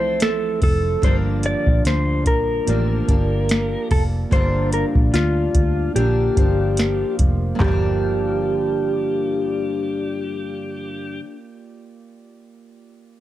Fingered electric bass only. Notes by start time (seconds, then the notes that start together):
Already playing: C2
0.62 F1
1.03 G1
1.67 A#1
1.85 D2
2.26 A#1
2.68 A1
3.09 G1
3.91 F1
4.32 G1
4.95 A#1
5.13 D2
5.55 D2
5.96 A#1
6.37 G1
7.19 F1
7.60 G1